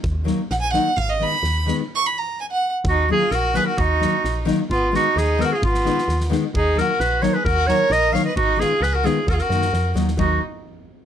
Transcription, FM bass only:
\new Staff \with { instrumentName = "FM bass" } { \clef bass \time 2/4 \key ees \minor \tempo 4 = 130 ees,4 bes,,4 | aes,,4 ees,4 | r2 | ees,4 bes,,4 |
ees,4 bes,,4 | aes,,4 ees,4 | aes,,4 ees,4 | ees,4 bes,,4 |
ees,4 bes,,4 | aes,,4 des,4 | ees,8 ges,8 f,8 ees,8 | ees,8 r4. | }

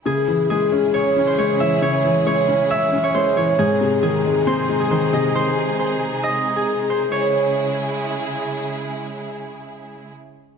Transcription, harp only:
\new Staff \with { instrumentName = "Harp" } { \time 4/4 \key cis \minor \tempo 4 = 136 gis'4 gis'4 cis''8. bis'16 cis''8 e''8 | cis''4 cis''4 e''8. cis''16 bis'8 cis''8 | gis'4 gis'4 bis'8. gis'16 bis'8 dis''8 | bis'4 bis'4 dis''8. gis'8. bis'8 |
cis''2. r4 | r1 | }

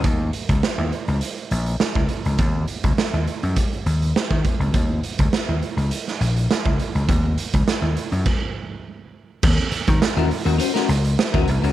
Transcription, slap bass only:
\new Staff \with { instrumentName = "Slap bass" } { \clef bass \time 4/4 \key ees \dorian \tempo 4 = 102 ees,8 r16 des,16 r16 ees,16 r16 des,16 r8 bes,,8 r16 des,16 r16 des,16 | ees,8 r16 des,16 r16 ees,16 r16 ges,16 r8 ees,8 r16 ees16 r16 des,16 | ees,8 r16 des,16 r16 ees,16 r16 des,16 r8 bes,,8 r16 des,16 r16 des,16 | ees,8 r16 des,16 r16 ees,16 r16 ges,16 r2 |
ees,16 r8 ees16 r16 ees,16 r16 ees,16 r8 des,8 r16 ees,16 c,16 des,16 | }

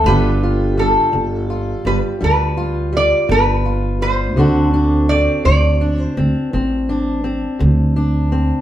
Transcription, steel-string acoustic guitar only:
\new Staff \with { instrumentName = "Steel-string acoustic guitar" } { \time 12/8 \key d \mixolydian \tempo 4. = 56 << { <d g f' g'>8 f'8 g4 f'8 g8 g8 f'8 g4 f'8 g8 | <d c' d' fis'>8 d'8 c'4 d'8 c'8 c'8 d'8 c'4 d'8 c'8 | } \\ { g,4 r8 d4 r8 g,4 r8 d4 r8 | d,4 r8 d4 r8 d,4 r8 d4 r8 | } >> }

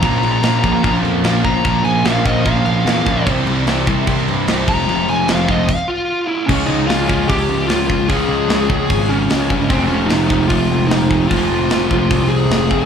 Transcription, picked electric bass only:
\new Staff \with { instrumentName = "Picked electric bass" } { \clef bass \time 4/4 \key f \minor \tempo 4 = 149 bes,,8 bes,,8 bes,,8 bes,,8 bes,,8 f,8 bes,,8 bes,,8 | bes,,8 bes,,8 bes,,8 bes,,8 bes,,8 bes,,8 e,8 bes,,8 | c,8 c,8 c,8 c,8 c,8 g,8 c,8 f,,8 | f,,8 f,,8 f,,8 f,,8 r2 |
\key des \lydian des,8 des,8 des,8 des,8 des,8 des,8 des,4 | des,8 des,8 des,8 des,8 aes,,4 des,8 g,8 | f,,8 f,,8 f,,8 f,,8 f,,8 f,,8 f,,4 | f,,8 f,,8 f,,8 f,,8 c,4 f,,8 f,,8 | }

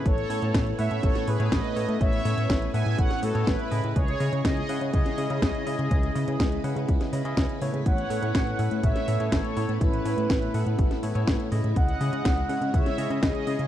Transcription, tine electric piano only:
\new Staff \with { instrumentName = "Tine electric piano" } { \time 4/4 \key a \lydian \tempo 4 = 123 <a, b e' a' cis''>8 <a, b e' a' cis''>4 <a, b e' a' fis''>4 <a, b e' a' cis''>16 <a, b e' a' cis''>8. <a, b e' a' cis''>8~ | <a, b e' a' cis''>8 <a, b e' a' cis''>4 <a, b e' a' fis''>4 <a, b e' a' cis''>16 <a, b e' a' cis''>8. <cis cis' e' gis' dis''>8~ | <cis cis' e' gis' dis''>8 <cis cis' e' gis' dis''>4 <cis cis' e' gis' fis''>4 <cis cis' e' gis' dis''>16 <cis cis' e' gis' dis''>8. <cis cis' e' gis' dis''>8~ | <cis cis' e' gis' dis''>8 <cis cis' e' gis' dis''>4 <cis cis' e' gis' fis''>4 <cis cis' e' gis' dis''>16 <cis cis' e' gis' dis''>8. <a, b e' a' cis''>8~ |
<a, b e' a' cis''>8 <a, b e' a' cis''>4 <a, b e' a' fis''>4 <a, b e' a' cis''>16 <a, b e' a' cis''>8. <a, b e' a' cis''>8~ | <a, b e' a' cis''>8 <a, b e' a' cis''>4 <a, b e' a' fis''>4 <a, b e' a' cis''>16 <a, b e' a' cis''>8. <cis cis' e' gis' dis''>8~ | <cis cis' e' gis' dis''>8 <cis cis' e' gis' dis''>4 <cis cis' e' gis' fis''>4 <cis cis' e' gis' dis''>16 <cis cis' e' gis' dis''>8. <cis cis' e' gis' dis''>8 | }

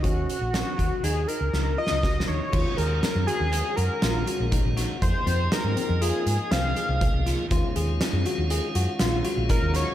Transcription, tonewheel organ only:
\new Staff \with { instrumentName = "Tonewheel organ" } { \time 5/4 \key ees \minor \tempo 4 = 121 r1 r4 | <ees aes des' ges'>1~ <ees aes des' ges'>4 | <f bes ees' aes'>1~ <f bes ees' aes'>4 | <ees aes des' f'>1~ <ees aes des' f'>4 | }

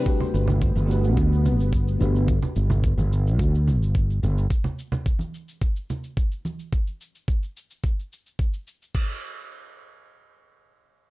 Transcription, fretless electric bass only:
\new Staff \with { instrumentName = "Fretless electric bass" } { \clef bass \time 4/4 \key c \lydian \tempo 4 = 108 r8 g,,8. g,,8. d,8. g,,8. g,,8~ | g,,16 r16 g,,8. g,,8. d,8. g,,8. g,,8 | r1 | r1 |
r1 | }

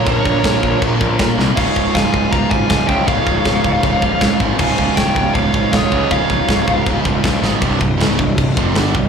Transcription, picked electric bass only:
\new Staff \with { instrumentName = "Picked electric bass" } { \clef bass \time 4/4 \tempo 4 = 159 bes,,8 bes,,8 bes,,8 bes,,8 bes,,8 bes,,8 bes,8 c,8 | des,,8 des,,8 des,,8 des,,8 des,,8 aes,,8 des,,8 des,8 | des,,8 des,,8 des,,8 des,,8 des,,8 des,,8 des,8 aes,,8 | des,,8 des,,8 des,,8 des,,8 des,,8 aes,,8 des,,8 des,8 |
des,,8 des,,8 des,,8 des,,8 des,,8 des,,8 des,8 aes,,8 | c,,8 c,,8 des,,8 c,,8 c,,8 f,,8 g,,8 c,,8 | }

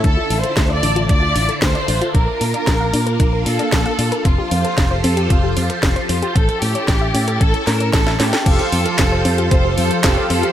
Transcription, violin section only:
\new Staff \with { instrumentName = "Violin section" } { \time 4/4 \key f \major \tempo 4 = 114 \tuplet 3/2 { a'4 c''8~ c''8 d''4 } d''4 c''4 | bes'2~ bes'8 a'4. | f'4. a'8 f'4 r8 f'8 | a'8 g'4. a'8 bes'8 <e' a'>8 <e' g'>8 |
<f' a'>2 <a' c''>8 <f' a'>8 <f' a'>8 <f' a'>8 | }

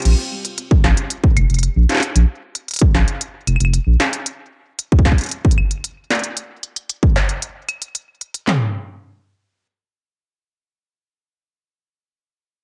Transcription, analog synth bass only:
\new Staff \with { instrumentName = "Analog synth bass" } { \clef bass \time 4/4 \key c \mixolydian \tempo 4 = 114 bes,,16 r4 r16 bes,,16 r8. f,,16 f,,16 r16 bes,,16 r8 | bes,,16 r4 r16 bes,,16 r8. f,,16 f,,16 r16 bes,,16 r8 | r1 | r1 |
r1 | r1 | }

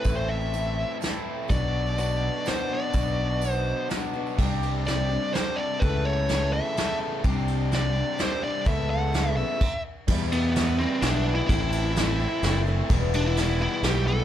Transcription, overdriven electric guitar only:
\new Staff \with { instrumentName = "Overdriven electric guitar" } { \time 3/4 \key e \minor \tempo 4 = 126 <a, e a c' e'>2 <a, e a c' e'>4 | <b, fis b d' fis'>2 <b, fis b d' fis'>4 | <b, fis b d' fis'>2 <b, fis b d' fis'>4 | <c g c' d' g'>2 <c g c' d' g'>4 |
<cis e a e' a'>2 <cis e a e' a'>4 | <c g c' d' g'>2 <c g c' d' g'>4 | <cis e a e' a'>2 r4 | <e, b, e g b e'>8 <e g b e'>8 <e g b e'>8 <e, b, e g b e'>8 <e g b e'>8 <e, b, e g b e'>8 |
<a, e a c' e'>8 <a c' e'>8 <e a c' e'>8 <a, e a c' e'>8 <e a c' e'>8 <a, e a c' e'>8 | <e, b, e g b e'>8 <e g b e'>8 <e g b e'>8 <e, b, e g b e'>8 <e g b e'>8 <e, b, e g b e'>8 | }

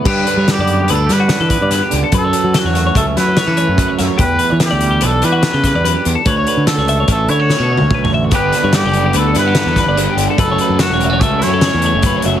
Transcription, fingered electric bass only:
\new Staff \with { instrumentName = "Fingered electric bass" } { \clef bass \time 5/4 \key g \lydian \tempo 4 = 145 g,8 r16 g8 fis,8. d,8 g8. e8 g,8 r16 cis,16 r16 | fis,8 r16 fis8 e,8. cis,8 fis8. e8 fis,8 r16 fis,16 r16 | e,8 r16 e8 d,8. b,,8 e8. cis8 e,8 r16 e,16 r16 | d,8 r16 d8 cis,8. a,,8 d8. b,8 d,16 b,,8 a,,8 |
g,,8 r16 g,8 fis,,8. d,8 g,8. e,8 g,,8 r16 g,,16 r16 | fis,,8 r16 fis,8 e,,8. cis,8 fis,8. e,8 fis,,8 r16 fis,,16 r16 | }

